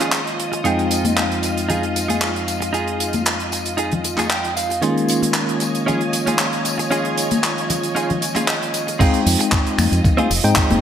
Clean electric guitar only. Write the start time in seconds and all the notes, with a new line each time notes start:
0.00 C#4 D#4 F4 G#4
0.38 muted clean electric guitar stroke
0.52 muted clean electric guitar stroke
0.64 D#4 F4 G#4
1.42 muted clean electric guitar stroke
1.69 D#4 F4 G#4
1.95 muted clean electric guitar stroke
2.08 D#4 F4 G#4
2.47 muted clean electric guitar stroke
2.61 muted clean electric guitar stroke
2.73 D#4 F4 G#4
3.51 muted clean electric guitar stroke
3.77 D#4 F4 G#4
4.04 muted clean electric guitar stroke
4.17 D#4 F4 G#4
4.30 G5
4.56 F5, muted clean electric guitar stroke
4.69 muted clean electric guitar stroke
4.82 C#4 D#4 F4 G#4
5.60 muted clean electric guitar stroke
5.86 C#4 D#4 F4 G#4
6.13 muted clean electric guitar stroke
6.26 C#4 D#4 F4 G#4
6.64 muted clean electric guitar stroke
6.78 muted clean electric guitar stroke
6.91 C#4 D#4 F4 G#4
7.69 muted clean electric guitar stroke
7.95 C#4 D#4 F4 G#4
8.21 muted clean electric guitar stroke
8.35 C#4 D#4 F4 G#4
8.48 D#5
8.73 muted clean electric guitar stroke
8.87 muted clean electric guitar stroke
8.99 C4 D#4 F4 G#4
9.39 muted clean electric guitar stroke
9.51 muted clean electric guitar stroke
10.17 C4 D#4 F4 G#4
10.44 muted clean electric guitar stroke
10.56 muted clean electric guitar stroke
10.69 muted clean electric guitar stroke